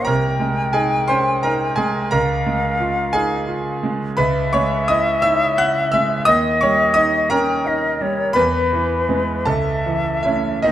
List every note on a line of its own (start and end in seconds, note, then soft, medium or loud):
0.05 2.10 C2 medium
0.05 0.71 A#4 medium
0.05 2.14 G5 medium
0.05 0.74 A#5 medium
0.40 0.95 G#3 soft
0.73 1.31 D#4 soft
0.73 1.07 G#4 medium
0.73 1.09 G#5 medium
1.08 1.44 C#4 soft
1.08 1.42 C5 medium
1.08 1.44 C6 medium
1.43 2.00 D#4 soft
1.43 1.76 A#4 medium
1.43 1.78 A#5 medium
1.76 2.12 G#3 soft
1.76 2.10 G#4 medium
1.76 2.12 G#5 medium
2.11 4.15 C#2 medium
2.11 3.10 A#4 medium
2.11 3.91 F5 medium
2.11 3.14 A#5 medium
2.47 3.01 G#3 soft
2.80 3.35 F4 soft
3.13 3.49 D#4 soft
3.13 3.46 G#4 medium
3.13 3.48 G#5 medium
3.48 4.04 F4 soft
3.83 4.19 G#3 soft
4.17 6.22 C#2 medium
4.17 4.51 B4 medium
4.17 6.22 E5 medium
4.17 4.53 B5 medium
4.53 5.09 G#3 soft
4.53 4.86 C#5 medium
4.53 4.88 C#6 medium
4.88 5.44 E4 soft
4.88 5.21 D#5 medium
4.88 5.23 D#6 medium
5.22 5.57 D#4 soft
5.22 5.55 E5 medium
5.22 5.57 E6 loud
5.58 6.13 E4 soft
5.58 5.90 F#5 medium
5.58 5.92 F#6 medium
5.92 6.27 G#3 soft
5.92 6.25 E5 medium
5.92 6.26 E6 medium
6.25 8.34 D#2 medium
6.25 7.32 D#5 medium
6.25 6.59 D#5 medium
6.25 6.61 D#6 loud
6.61 7.18 G3 soft
6.61 6.95 C#5 medium
6.61 6.96 C#6 medium
6.94 7.51 D#4 soft
6.94 7.28 D#5 medium
6.94 7.30 D#6 medium
7.30 7.66 C#4 soft
7.30 8.33 A#4 medium
7.30 7.69 G5 medium
7.30 8.36 A#5 medium
7.64 8.22 D#4 soft
7.64 8.03 D#5 medium
8.01 8.37 G3 soft
8.01 8.36 C#5 medium
8.33 9.43 E2 medium
8.33 9.42 B4 medium
8.33 9.49 B4 medium
8.33 9.45 B5 loud
8.73 9.32 E3 soft
9.09 9.43 G#3 soft
9.09 9.43 B3 soft
9.46 10.62 C#2 medium
9.46 10.21 A4 medium
9.46 10.64 E5 medium
9.46 10.24 A5 medium
9.86 10.49 E3 soft
10.23 10.62 A3 soft
10.23 10.62 C#4 soft
10.23 10.62 E4 soft
10.23 10.64 E5 medium
10.62 10.72 D#2 medium
10.62 10.72 D#4 medium
10.62 10.72 D#5 medium